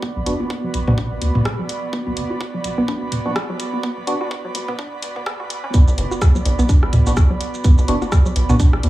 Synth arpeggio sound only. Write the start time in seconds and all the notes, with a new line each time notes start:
0.03 B3
0.40 F#4
0.64 F#3
0.88 B3
0.98 D4
1.35 B3
1.59 F#3
1.93 B3
2.30 F#4
2.54 F#3
2.78 B3
2.88 D4
3.26 B3
3.49 F#3
3.83 B3
4.21 F#4
4.45 F#3
4.68 B3
4.79 D4
5.16 B3
5.26 B3
5.40 F#4
5.64 C#4
5.74 B3
6.11 F#4
6.35 F#3
6.59 B3
6.69 D4
7.07 B3
7.30 F#3
7.64 B3
8.02 F#4
8.26 F#3
8.49 B3
8.60 D4